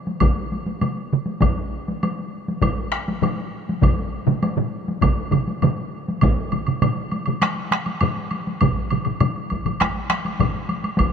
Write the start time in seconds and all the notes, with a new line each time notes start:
0.07 taiko high
0.20 taiko, taiko mid, taiko high, high woodblock
0.52 taiko high
0.66 taiko high
0.81 taiko mid, taiko high, high woodblock
1.13 taiko mid
1.26 taiko high
1.41 taiko, taiko low-mid, taiko high, high woodblock
1.88 taiko high
2.03 taiko high, high woodblock
2.48 taiko high
2.61 taiko, taiko low-mid, taiko high, high woodblock
2.92 taiko rim, high woodblock
3.08 taiko high
3.22 taiko low-mid, taiko high, high woodblock
3.69 taiko high
3.82 taiko, taiko low-mid, taiko mid, taiko high, high woodblock
4.27 taiko low-mid, taiko mid, taiko high
4.43 taiko high, high woodblock
4.57 taiko low-mid, taiko mid
4.88 taiko high
5.01 taiko, taiko low-mid, taiko mid, taiko high, high woodblock
5.32 taiko low-mid, taiko mid, taiko high, high woodblock
5.48 taiko high
5.62 taiko low-mid, taiko mid, taiko high, high woodblock
6.08 taiko high
6.21 taiko, taiko low-mid, taiko mid, taiko high, high woodblock
6.52 taiko low-mid, taiko mid, taiko high, high woodblock
6.67 taiko low-mid, taiko mid, high woodblock
6.82 taiko low-mid, taiko mid, taiko high, high woodblock
7.12 taiko high, high woodblock
7.26 taiko low-mid, taiko mid, taiko high, high woodblock
7.42 taiko rim, taiko high, high woodblock
7.71 taiko rim, taiko high, high woodblock
7.86 taiko high, high woodblock
8.01 taiko low-mid, taiko mid, taiko high, high woodblock
8.31 taiko high, high woodblock
8.47 taiko high
8.61 taiko, taiko low-mid, taiko mid, taiko high, high woodblock
8.91 taiko low-mid, taiko mid, taiko high, high woodblock
9.05 taiko low-mid, taiko mid, high woodblock
9.20 taiko low-mid, taiko mid, taiko high, high woodblock
9.50 taiko, taiko high, high woodblock
9.65 taiko low-mid, taiko mid, taiko high, high woodblock
9.80 taiko rim, taiko, taiko high, high woodblock
10.10 taiko rim, taiko high, high woodblock
10.25 taiko high, high woodblock
10.40 taiko, taiko low-mid, taiko mid, taiko high, high woodblock
10.69 taiko high, high woodblock
10.84 taiko high, high woodblock
10.97 taiko, taiko high, high woodblock